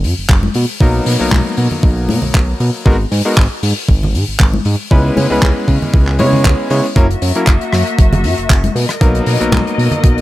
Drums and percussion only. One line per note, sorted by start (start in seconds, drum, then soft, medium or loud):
0.04 open hi-hat medium
0.29 kick loud
0.29 clap loud
0.43 high conga medium
0.54 open hi-hat loud
0.81 kick loud
1.06 open hi-hat loud
1.31 kick loud
1.31 clap loud
1.31 high conga medium
1.57 open hi-hat medium
1.71 low conga medium
1.83 kick loud
2.09 open hi-hat medium
2.09 high conga medium
2.22 low conga medium
2.34 kick loud
2.34 clap loud
2.60 open hi-hat medium
2.86 kick loud
3.12 open hi-hat loud
3.37 kick loud
3.37 clap loud
3.63 open hi-hat loud
3.89 kick loud
4.03 low conga medium
4.15 open hi-hat medium
4.40 kick loud
4.40 clap loud
4.54 high conga medium
4.65 open hi-hat loud
4.91 kick loud
5.17 open hi-hat medium
5.17 high conga medium
5.42 kick loud
5.42 clap loud
5.42 high conga medium
5.68 kick medium
5.68 open hi-hat medium
5.82 low conga medium
5.94 kick loud
6.07 clap soft
6.19 open hi-hat loud
6.19 high conga medium
6.33 low conga medium
6.45 kick loud
6.45 clap loud
6.70 open hi-hat loud
6.96 kick loud
6.96 closed hi-hat loud
7.11 closed hi-hat soft
7.22 open hi-hat loud
7.35 closed hi-hat medium
7.47 kick loud
7.47 clap loud
7.47 closed hi-hat medium
7.61 closed hi-hat soft
7.73 cross-stick medium
7.73 open hi-hat loud
7.87 closed hi-hat medium
7.99 kick loud
7.99 closed hi-hat loud
8.13 closed hi-hat medium
8.13 low conga loud
8.24 open hi-hat medium
8.38 closed hi-hat soft
8.50 kick loud
8.50 clap loud
8.50 closed hi-hat loud
8.64 closed hi-hat medium
8.64 high conga medium
8.76 open hi-hat loud
8.89 cross-stick medium
8.89 closed hi-hat medium
9.01 kick loud
9.01 closed hi-hat medium
9.15 closed hi-hat medium
9.26 open hi-hat loud
9.41 closed hi-hat medium
9.52 kick loud
9.52 clap loud
9.52 closed hi-hat medium
9.52 high conga loud
9.67 closed hi-hat medium
9.79 open hi-hat loud
9.91 closed hi-hat medium
9.91 low conga medium
10.04 kick loud
10.04 closed hi-hat loud
10.18 closed hi-hat soft